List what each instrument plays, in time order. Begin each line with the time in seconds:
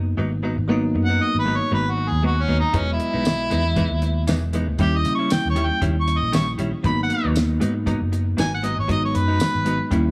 Already playing: fingered electric bass F#1, tine electric piano F#3 A#3 B3 D#4
0.17 fingered electric bass G#1, clean electric guitar G#2 F#3 B3 D#4
0.31 muted clean electric guitar stroke
0.43 clean electric guitar G#2 F#3 B3 D#4
0.57 fingered electric bass G#1, muted clean electric guitar stroke
0.68 clean electric guitar G#2 F#3 B3 D#4, tine electric piano F#3 A#3 B3 D#4
0.83 muted clean electric guitar stroke
0.94 fingered electric bass F#2, muted clean electric guitar stroke
1.05 clean electric guitar D#4, harmonica F#5
1.10 clean electric guitar F#3 B3
1.20 harmonica D#5, muted clean electric guitar stroke
1.34 fingered electric bass G#1
1.39 harmonica B4
1.45 clean electric guitar G#2 F#3 B3 D#4
1.56 harmonica C#5
1.60 muted clean electric guitar stroke
1.71 fingered electric bass G#1, clean electric guitar G#2 F#3 B3 D#4, harmonica B4
1.86 muted clean electric guitar stroke
1.90 harmonica F#4
1.97 muted clean electric guitar stroke
2.08 fingered electric bass D#2, harmonica G#4
2.23 clean electric guitar G#2 F#3 B3 D#4, harmonica F#4
2.37 muted clean electric guitar stroke
2.42 harmonica C#4
2.48 fingered electric bass D#2, clean electric guitar G#2 F#3 B3 D#4
2.59 harmonica D#4, muted clean electric guitar stroke, muted fingered electric bass stroke
2.73 fingered electric bass E1, clean electric guitar E3 G#3 B3 D#4, tine electric piano F#3 G#3 B3 D#5, harmonica C#4, kick, closed hi-hat
2.93 harmonica E4
2.99 muted clean electric guitar stroke, closed hi-hat
3.13 fingered electric bass B1, clean electric guitar G#3 B3 D#4
3.25 muted clean electric guitar stroke, snare, closed hi-hat, tambourine
3.50 fingered electric bass E2, clean electric guitar E3 G#3 B3 D#4, closed hi-hat
3.76 clean electric guitar E3 G#3 B3 D#4, kick, closed hi-hat
3.91 fingered electric bass D#2, muted clean electric guitar stroke
4.02 muted clean electric guitar stroke, closed hi-hat
4.27 fingered electric bass E1, clean electric guitar E3 G#3 B3 D#4, snare, closed hi-hat, tambourine
4.42 muted clean electric guitar stroke
4.53 clean electric guitar E3 G#3 B3 D#4, closed hi-hat
4.68 fingered electric bass D2, muted clean electric guitar stroke
4.78 fingered electric bass D#2, clean electric guitar D#3 G3 C#4 E4, tine electric piano G3 A#3 C#4 E4, harmonica G4, kick, closed hi-hat
4.93 muted clean electric guitar stroke
4.98 harmonica D#5
5.05 fingered electric bass C#3, muted clean electric guitar stroke, closed hi-hat
5.15 harmonica C#6
5.19 clean electric guitar G3 C#4 E4
5.30 harmonica G5, muted clean electric guitar stroke, snare, closed hi-hat, tambourine
5.45 fingered electric bass D#2
5.50 harmonica C#5
5.56 clean electric guitar D#3 G3 C#4 E4, closed hi-hat
5.66 harmonica G5
5.70 muted clean electric guitar stroke
5.81 fingered electric bass D#2, clean electric guitar D#3 G3 C#4 E4, kick, closed hi-hat
5.96 muted clean electric guitar stroke
6.00 harmonica C#6
6.07 muted clean electric guitar stroke, closed hi-hat
6.18 harmonica D#5
6.22 fingered electric bass A#1
6.32 clean electric guitar D#3 G3 C#4 E4, harmonica C#6, snare, closed hi-hat, tambourine
6.47 muted clean electric guitar stroke
6.58 fingered electric bass A#1, clean electric guitar D#3 G3 C#4 E4, closed hi-hat
6.72 muted clean electric guitar stroke, muted fingered electric bass stroke
6.83 fingered electric bass G#1, clean electric guitar G#2 F#3 B3 D#4, tine electric piano F#3 A#3 B3 D#4, harmonica B5, kick, closed hi-hat
6.98 muted clean electric guitar stroke
7.03 harmonica F#5
7.09 muted clean electric guitar stroke, closed hi-hat
7.24 fingered electric bass D#2, clean electric guitar F#3 B3 D#4
7.35 muted clean electric guitar stroke, snare, closed hi-hat, tambourine
7.60 clean electric guitar G#2 F#3 B3 D#4, fingered electric bass G#2, closed hi-hat
7.75 muted clean electric guitar stroke
7.86 clean electric guitar G#2 F#3 B3 D#4, kick, closed hi-hat
8.01 fingered electric bass F#1, muted clean electric guitar stroke
8.12 muted clean electric guitar stroke, closed hi-hat
8.37 fingered electric bass G#1, clean electric guitar G#2 F#3 B3 D#4, harmonica G#5, snare, closed hi-hat, tambourine
8.52 harmonica F#5, muted clean electric guitar stroke
8.63 clean electric guitar G#2 F#3 B3 D#4, harmonica D#5, closed hi-hat
8.77 fingered electric bass G#1, harmonica C#5, muted clean electric guitar stroke
8.88 clean electric guitar G#2 F#3 B3 D#4, tine electric piano F#3 G#3 B3 D#4, harmonica D#5, kick, closed hi-hat
9.02 harmonica C#5, muted clean electric guitar stroke
9.14 fingered electric bass F#2, harmonica B4, muted clean electric guitar stroke, closed hi-hat
9.28 clean electric guitar F#3 B3 D#4
9.40 muted clean electric guitar stroke, snare, closed hi-hat, tambourine
9.55 fingered electric bass G#1
9.65 clean electric guitar G#2 F#3 B3 D#4, closed hi-hat
9.79 muted clean electric guitar stroke
9.91 fingered electric bass D#2, clean electric guitar D#3 G3 C#4 E4, tine electric piano G3 A#3 C#4 E4, kick, closed hi-hat
10.05 muted clean electric guitar stroke